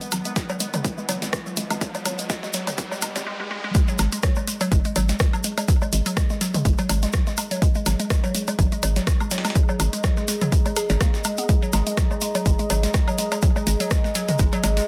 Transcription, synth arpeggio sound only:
0.01 G#3
0.12 F#3
0.25 G#3
0.36 G#3
0.49 F#3
0.60 G#3
0.74 G#3
0.84 G#3
0.98 G#3
1.09 F#3
1.22 G#3
1.33 G#3
1.46 F#3
1.57 G#3
1.70 G#3
1.81 G#3
1.95 G#3
2.05 F#3
2.19 G#3
2.30 G#3
2.43 G#3
2.54 F#3
2.67 G#3
2.78 G#3
2.91 G#3
3.02 G#3
3.16 G#3
3.26 G#3
3.40 G#3
3.51 G#3
3.64 G#3
3.75 G#3
3.88 F#3
3.99 G#3
4.12 G#3
4.23 F#3
4.37 G#3
4.47 G#3
4.61 F#3
4.72 G#3
4.85 G#3
4.96 F#3
5.09 G#3
5.20 G#3
5.33 F#3
5.44 G#3
5.58 G#3
5.68 F#3
5.82 G#3
5.93 G#3
6.06 F#3
6.30 G#3
6.41 F#3
6.54 G#3
6.65 G#3
6.79 F#3
6.89 G#3
7.03 G#3
7.14 F#3
7.27 G#3
7.38 G#3
7.51 F#3
7.62 G#3
7.75 G#3
7.86 F#3
8.00 G#3
8.10 G#3
8.24 F#3
8.35 G#3
8.48 G#3
8.59 F#3
8.72 G#3
8.83 G#3
8.96 F#3
9.07 G#3
9.20 G#3
9.31 F#3
9.45 G#3
9.56 G#3
9.69 F#3
9.80 G#3
9.93 G#3
10.04 F#3
10.17 G#3
10.28 G#3
10.41 F#3
10.52 G#3
10.66 G#3
10.76 G#4
10.90 G#3
11.01 A#3
11.25 G#3
11.38 B3
11.49 G#3
11.62 F#3
11.73 G#3
11.87 G#3
11.97 F#3
12.11 G#3
12.22 G#3
12.35 F#3
12.46 G#3
12.59 G#3
12.70 F#3
12.83 G#3
12.94 G#3
13.08 F#3
13.18 G#3
13.32 G#3
13.43 F#3
13.56 G#3
13.67 G#3
13.80 F#3
13.91 G#3
14.04 G#3
14.15 F#3
14.28 G#3
14.39 G#3
14.53 F#3
14.64 G#3
14.77 G#3

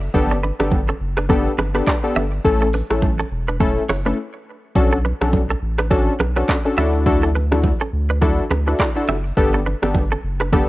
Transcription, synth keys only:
0.14 B3 D4 G4 A4
0.59 B3 D4 G4 A4
1.29 B3 D4 G4 A4
1.75 B3 D4 G4 A4
2.03 B3 D4 G4 A4
2.44 A3 C#4 E4 A4
2.90 A3 C#4 E4 A4
3.60 A3 C#4 E4 A4
4.05 A3 C#4 E4 A4
4.75 C#4 D4 F#4 A4
5.21 C#4 D4 F#4 A4
5.91 C#4 D4 F#4 A4
6.36 C#4 D4 F#4 A4
6.65 C#4 D4 F#4 A4
6.77 D4 E4 F#4 A4
7.06 D4 E4 F#4 A4
7.52 D4 E4 F#4 A4
8.21 D4 E4 F#4 A4
8.67 D4 E4 F#4 A4
8.96 D4 E4 F#4 A4
9.37 B3 D4 G4 A4
9.82 B3 D4 G4 A4
10.52 B3 D4 G4 A4

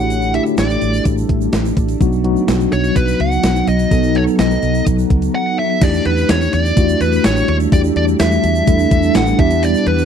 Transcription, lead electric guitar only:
Already playing: F#5
0.35 E5
0.59 D5
2.73 C#5
2.97 B4
3.21 F#5
3.69 D#5
4.16 C#5
4.40 D#5
5.35 F#5
5.59 E5
5.83 D5
6.06 B4
6.30 C#5
6.54 D5
7.02 B4
7.26 C#5
7.49 C#5
7.73 D5
7.97 D5
8.21 E5
9.16 F#5
9.40 E5
9.64 D5
9.88 B4

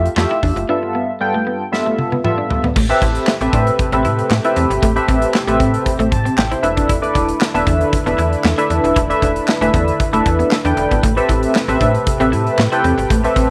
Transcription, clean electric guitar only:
0.17 muted clean electric guitar stroke
0.31 E4
0.43 D4
0.69 D4
0.83 muted clean electric guitar stroke
0.95 B3
1.21 muted clean electric guitar stroke
1.34 A3
1.47 B3
1.86 A3
1.99 muted clean electric guitar stroke
2.12 B3
2.38 D4
2.50 muted clean electric guitar stroke
2.64 B3
2.76 A3
2.90 muted clean electric guitar stroke
3.02 E4
3.28 muted clean electric guitar stroke
3.41 C4
3.53 D4
3.79 muted clean electric guitar stroke
3.93 C4
4.05 E4
4.31 muted clean electric guitar stroke
4.45 E4
4.56 C4
4.82 A3
4.96 muted clean electric guitar stroke
5.08 C4
5.34 muted clean electric guitar stroke
5.47 A3
5.60 C4
5.99 A3
6.12 muted clean electric guitar stroke
6.25 C4
6.52 E4
6.63 muted clean electric guitar stroke
6.77 D4
6.89 E4
7.03 muted clean electric guitar stroke
7.15 D4
7.41 muted clean electric guitar stroke
7.55 B3
7.67 D4
7.93 muted clean electric guitar stroke
8.06 B3
8.19 E4
8.44 muted clean electric guitar stroke
8.58 E4
8.70 D4
8.96 E4
9.10 muted clean electric guitar stroke
9.22 D4
9.48 muted clean electric guitar stroke
9.62 A3
9.74 B3
10.13 A3
10.26 muted clean electric guitar stroke
10.39 B3
10.65 D4
10.77 muted clean electric guitar stroke
10.91 B3
11.03 A3
11.17 muted clean electric guitar stroke
11.29 E4
11.55 muted clean electric guitar stroke
11.69 C4
11.81 D4
12.07 muted clean electric guitar stroke
12.20 C4
12.32 E4
12.59 muted clean electric guitar stroke
12.72 E4
12.84 C4
13.10 A3
13.24 muted clean electric guitar stroke
13.36 C4

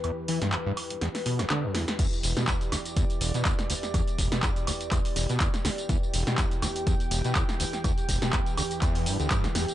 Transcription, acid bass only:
0.04 E2
0.28 E3
0.42 G2
0.53 E2
0.66 G2
1.01 E2
1.26 B2
1.39 E2
1.50 D3
1.64 F#2
1.75 E2
1.99 E2
2.23 E1
2.37 B2
2.48 E2
2.72 D2
2.96 E2
3.21 E1
3.34 B2
3.45 E2
3.70 D2
3.94 E2
4.18 E1
4.32 B2
4.43 E2
4.67 D2
4.92 E2
5.16 E1
5.29 B2
5.40 E2
5.65 D2
5.89 E2
6.14 E1
6.27 B2
6.38 E2
6.62 D2
6.87 E2
7.11 E1
7.25 B2
7.36 E2
7.60 D2
7.84 E2
8.09 E1
8.22 B2
8.33 E2
8.58 D2
8.82 E2
9.06 G2
9.20 D2
9.31 G2
9.44 E1
9.55 E2

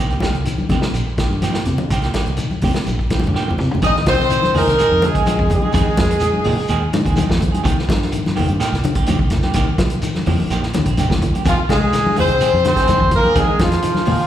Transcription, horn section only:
3.84 D#5
4.08 C5
4.58 A#4
5.06 G#4
5.55 G#4
11.49 F4
11.72 G#4
12.20 C5
12.68 C5
13.15 A#4
13.39 G#4
13.62 F4

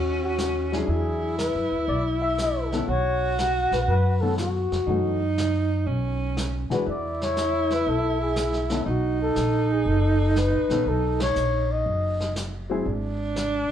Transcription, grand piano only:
0.72 F#3 D4 E4 G#4
2.72 D#3 B3 C#4 A4
4.22 D#3 B3 C#4 A4
4.88 E3 A3 C#4 F#4
6.70 E3 G#3 D4 F#4
8.70 D#3 B3 C#4 A4
10.70 D#3 B3 C#4 A4
12.70 F#3 C4 E4 G#4

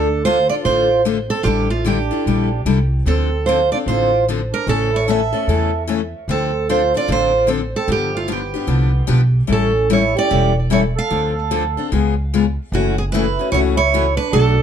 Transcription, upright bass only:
Already playing: D2
0.65 A1
1.45 A1
2.26 A#1
2.65 C2
3.06 D2
3.86 A1
4.67 A1
5.48 E2
6.28 D2
7.08 A1
7.88 G1
8.67 C2
9.09 B1
9.49 A1
10.31 E1
11.11 D2
11.92 C#2
12.72 F#1
13.52 C#2
14.33 B1

